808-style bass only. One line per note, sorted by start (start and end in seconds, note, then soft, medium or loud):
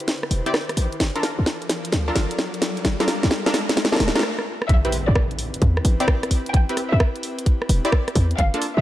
0.31 0.42 E1 medium
0.77 0.88 A1 medium
1.00 1.11 G1 loud
1.39 1.44 D2 medium
1.92 2.11 D2 loud
2.16 2.26 G1 loud
2.85 2.96 G1 loud
3.23 3.29 D2 medium
4.00 4.11 D1 medium
4.69 4.80 A1 loud
5.08 5.13 E2 medium
5.62 5.80 E2 loud
5.85 5.96 A1 loud
6.54 6.65 A1 loud
6.92 6.98 E2 medium
7.69 7.80 E1 medium
8.16 8.34 E2 medium
8.39 8.50 G1 loud
8.77 8.81 D2 medium